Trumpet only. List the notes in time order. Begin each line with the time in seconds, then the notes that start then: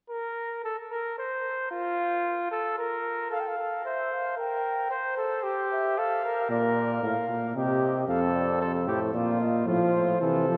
3.33 F5
3.40 G5
3.48 F5
3.86 E5
4.13 F5
4.39 G5
4.93 C5
5.71 E5
5.98 F5
6.51 D5
6.77 D5
7.04 F5
7.56 D#5
8.08 F5
8.35 D5
8.62 C5
9.14 D5
9.40 D#5
9.67 C5